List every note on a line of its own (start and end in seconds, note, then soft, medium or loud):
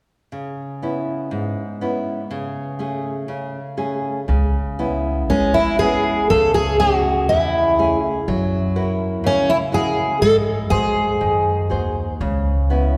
0.32 1.29 C#3 soft
0.82 1.62 B3 soft
0.82 1.62 C#4 soft
0.82 1.62 E4 soft
1.31 2.27 G#2 soft
1.81 2.21 B3 soft
1.81 2.21 C#4 soft
1.81 2.21 E4 soft
2.31 3.26 C#3 medium
2.79 3.58 A3 soft
2.79 3.59 C#4 soft
2.79 3.59 G#4 soft
3.28 4.26 C#3 medium
3.77 4.18 A3 soft
3.77 4.18 C#4 soft
3.77 4.18 G#4 soft
4.28 5.30 C#2 medium
4.28 5.27 C#3 medium
4.79 5.60 B3 soft
4.79 5.60 C#4 soft
4.79 5.60 E4 soft
5.30 5.96 G#1 medium
5.30 6.28 G#3 medium
5.30 5.56 C#4 medium
5.54 5.79 E4 medium
5.79 6.21 B3 soft
5.79 6.21 C#4 soft
5.79 6.22 E4 soft
5.79 6.27 G#4 medium
6.30 7.29 C#2 medium
6.30 7.27 C#3 soft
6.30 6.54 A4 medium
6.54 6.79 G#4 medium
6.80 7.60 A3 soft
6.80 7.60 C#4 soft
6.80 7.32 F#4 medium
6.80 7.61 G#4 soft
7.29 7.93 E2 medium
7.29 8.25 C#3 medium
7.29 7.99 E4 medium
7.79 8.18 A3 soft
7.79 8.18 C#4 soft
7.79 8.18 G#4 soft
8.28 9.24 F#2 medium
8.28 9.22 F#3 medium
8.76 9.54 E4 soft
8.76 9.54 F#4 soft
8.76 9.54 A#4 soft
9.24 9.88 C#2 medium
9.24 10.19 C#3 medium
9.24 9.51 C#4 medium
9.50 9.56 E4 medium
9.72 10.12 E4 soft
9.72 10.12 F#4 soft
9.72 10.22 G#4 medium
9.72 10.12 A#4 soft
10.21 10.71 G#2 medium
10.21 11.19 G#3 soft
10.21 10.35 A4 medium
10.70 11.18 G#2 medium
10.70 11.51 F#4 soft
10.70 11.67 G#4 medium
10.70 11.51 G#4 soft
10.70 11.52 C5 soft
11.21 11.68 F#2 medium
11.21 12.18 D#3 medium
11.70 12.18 D#2 medium
11.70 12.11 F#4 soft
11.70 12.11 G#4 soft
11.70 12.11 C5 soft
12.21 12.97 C#2 medium
12.21 12.97 C#3 medium
12.70 12.97 B3 soft
12.70 12.97 C#4 soft
12.70 12.97 E4 soft